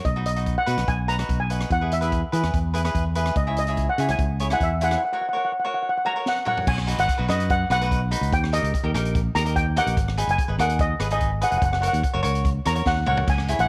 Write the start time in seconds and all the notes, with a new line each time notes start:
0.05 B1 D#5, kick, closed hi-hat
0.16 D#4 F#4 B4
0.26 D#5, closed hi-hat
0.36 D#4 F#4 B4, closed hi-hat
0.46 kick, closed hi-hat
0.58 F#5
0.66 B2 D#4 F#4 B4, closed hi-hat
0.78 B1, cross-stick, closed hi-hat
0.88 B1 G#5, kick, closed hi-hat
1.08 D#4 F#4 B4 A#5, closed hi-hat
1.19 D#4 F#4 B4, cross-stick, closed hi-hat
1.29 B1, kick, closed hi-hat
1.40 G#5
1.50 D#4 F#4 B4, closed hi-hat
1.60 cross-stick, closed hi-hat
1.70 E2 F#5, kick, closed hi-hat
1.81 E4 G#4 B4
1.92 E5, closed hi-hat
2.01 E4 G#4 B4, closed hi-hat
2.12 kick, closed hi-hat
2.32 E3 E4 G#4 B4, closed hi-hat
2.43 E2, cross-stick, closed hi-hat
2.54 E2, kick, closed hi-hat
2.74 E4 G#4 B4, closed hi-hat
2.84 E4 G#4 B4, cross-stick, closed hi-hat
2.95 E2, kick, closed hi-hat
3.15 E4 G#4 B4, closed hi-hat
3.26 cross-stick, closed hi-hat
3.36 C#2 D#5, kick, closed hi-hat
3.47 E4 G#4 C#5
3.57 D#5, closed hi-hat
3.67 E4 G#4 C#5, closed hi-hat
3.77 kick, closed hi-hat
3.89 F#5
3.98 C#3 E4 G#4 C#5, closed hi-hat
4.08 C#2 G#5, cross-stick, closed hi-hat
4.19 C#2, kick, closed hi-hat
4.39 E4 G#4 C#5, closed hi-hat
4.50 E4 G#4 C#5 F#5, cross-stick, closed hi-hat
4.60 E2 E5, kick, closed hi-hat
4.81 E4 G#4 C#5 F#5, closed hi-hat
4.91 F#5, cross-stick, closed hi-hat
4.98 F#5
5.05 F#5
5.13 F#4 A#4 C#5 F#5
5.21 F#5
5.29 F#5
5.33 F#4 A#4 C#5 F#5
5.45 F#5
5.52 F#5
5.60 F#5
5.65 F#4 A#4 C#5 F#5
5.74 F#5
5.83 F#5
5.89 F#5
5.98 F#5
6.05 F#4 A#4 C#5 F#5 A#5
6.14 F#4 A#4 C#5 F#5
6.26 F#5, snare
6.45 F#4 A#4 C#5 F#5, mid tom
6.57 floor tom
6.67 B1 G#5, kick, crash
6.78 cross-stick
6.87 D#4 F#4 B4, closed hi-hat
6.98 G#1 F#5, closed hi-hat
7.09 kick, closed hi-hat
7.18 B1 D#4 F#4 B4
7.28 F#2 D#4 F#4 B4 D#5, cross-stick, closed hi-hat
7.40 closed hi-hat
7.50 F#5, kick, closed hi-hat
7.70 B1 D#4 F#4 B4 F#5, cross-stick, closed hi-hat
7.81 D#4 F#4 B4, closed hi-hat
7.91 kick, closed hi-hat
8.11 D#4 F#4 B4, closed hi-hat
8.21 C#2, closed hi-hat
8.32 D#2 G5, kick, closed hi-hat
8.44 cross-stick
8.53 D#4 G4 A#4 D#5, closed hi-hat
8.63 C#2, closed hi-hat
8.74 kick, closed hi-hat
8.83 D#2 D#4 G4 A#4
8.94 A#1 D#4 G4 A#4, cross-stick, closed hi-hat
9.05 closed hi-hat
9.15 kick, closed hi-hat
9.35 D#2 D#4 G4 A#4 A#5, cross-stick, closed hi-hat
9.45 D#4 G4 A#4, closed hi-hat
9.56 G5, kick, closed hi-hat
9.76 D#4 G4 A#4 F#5, closed hi-hat
9.86 A#1, closed hi-hat
9.97 G#1, kick, closed hi-hat
10.08 cross-stick
10.17 D#4 G#4 B4, closed hi-hat
10.27 F#1 G#5, closed hi-hat
10.38 kick, closed hi-hat
10.48 G#1 D#4 G#4 B4
10.59 D#2 D#4 G#4 A#4 F#5, cross-stick, closed hi-hat
10.69 closed hi-hat
10.79 D#5, kick, closed hi-hat
11.00 G#1 D#4 G#4 B4, cross-stick, closed hi-hat
11.10 D#4 G#4 B4 D#5, closed hi-hat
11.21 kick, closed hi-hat
11.41 D#4 G#4 B4 F#5, closed hi-hat
11.51 F1 F#5, closed hi-hat
11.58 F#5
11.62 F#1 F#5, kick, closed hi-hat
11.73 F#5, cross-stick
11.81 F#4 A#4 C#5 F#5, closed hi-hat
11.88 F#5
11.93 D#2, closed hi-hat
12.04 kick, closed hi-hat
12.14 F#1 F#4 A#4 C#5
12.23 C#2 F#4 A#4 C#5, closed hi-hat
12.35 closed hi-hat
12.45 kick, closed hi-hat
12.65 E2 F#4 A#4 C#5 A#5, cross-stick, closed hi-hat
12.75 F#4 A#4 C#5, closed hi-hat
12.86 D#2 F#5, kick, snare
13.06 C#2 F#4 A#4 C#5 F#5, mid tom
13.17 floor tom
13.27 C#2 G#5, kick, closed hi-hat, crash
13.38 cross-stick
13.48 E4 G#4 C#5, closed hi-hat
13.59 A#1 F#5, closed hi-hat